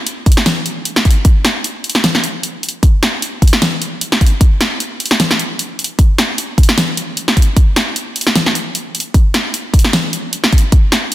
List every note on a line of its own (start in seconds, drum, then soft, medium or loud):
0.07 closed hi-hat medium
0.26 kick medium
0.26 closed hi-hat soft
0.32 closed hi-hat medium
0.37 snare medium
0.46 snare loud
0.46 closed hi-hat medium
0.66 closed hi-hat medium
0.85 closed hi-hat medium
0.96 snare medium
1.05 kick medium
1.05 closed hi-hat soft
1.11 closed hi-hat medium
1.25 kick loud
1.25 closed hi-hat medium
1.45 snare medium
1.45 closed hi-hat medium
1.64 closed hi-hat medium
1.84 closed hi-hat soft
1.90 closed hi-hat medium
1.95 snare medium
2.04 snare loud
2.04 closed hi-hat medium
2.15 snare medium
2.24 closed hi-hat medium
2.43 closed hi-hat medium
2.63 closed hi-hat soft
2.69 closed hi-hat medium
2.83 kick loud
2.83 closed hi-hat medium
3.03 snare medium
3.03 closed hi-hat medium
3.22 closed hi-hat medium
3.42 kick medium
3.42 closed hi-hat soft
3.47 closed hi-hat medium
3.53 snare medium
3.62 snare loud
3.62 closed hi-hat medium
3.82 closed hi-hat medium
4.01 closed hi-hat medium
4.12 snare medium
4.21 kick medium
4.21 closed hi-hat medium
4.26 closed hi-hat medium
4.41 kick loud
4.41 closed hi-hat medium
4.61 snare medium
4.61 closed hi-hat medium
4.80 closed hi-hat medium
5.00 closed hi-hat medium
5.06 closed hi-hat medium
5.11 snare medium
5.20 snare loud
5.20 closed hi-hat medium
5.31 snare medium
5.39 closed hi-hat medium
5.59 closed hi-hat medium
5.79 closed hi-hat medium
5.84 closed hi-hat medium
5.99 kick loud
5.99 closed hi-hat medium
6.18 snare medium
6.18 closed hi-hat medium
6.38 closed hi-hat medium
6.58 kick medium
6.58 closed hi-hat medium
6.63 closed hi-hat medium
6.69 snare medium
6.78 snare loud
6.78 closed hi-hat medium
6.97 closed hi-hat medium
7.17 closed hi-hat medium
7.28 snare medium
7.37 kick medium
7.37 closed hi-hat medium
7.42 closed hi-hat medium
7.57 kick loud
7.57 closed hi-hat medium
7.76 snare medium
7.76 closed hi-hat medium
7.96 closed hi-hat medium
8.16 closed hi-hat medium
8.21 closed hi-hat medium
8.27 snare medium
8.36 snare loud
8.36 closed hi-hat medium
8.46 snare medium
8.55 closed hi-hat medium
8.75 closed hi-hat medium
8.95 closed hi-hat medium
9.00 closed hi-hat medium
9.14 kick loud
9.14 closed hi-hat medium
9.34 snare medium
9.34 closed hi-hat medium
9.54 closed hi-hat medium
9.74 kick medium
9.74 closed hi-hat medium
9.79 closed hi-hat medium
9.84 snare medium
9.93 snare loud
9.93 closed hi-hat medium
10.13 closed hi-hat medium
10.33 closed hi-hat medium
10.44 snare medium
10.53 kick medium
10.53 closed hi-hat medium
10.58 closed hi-hat medium
10.72 kick loud
10.72 closed hi-hat medium
10.92 snare medium
10.92 closed hi-hat medium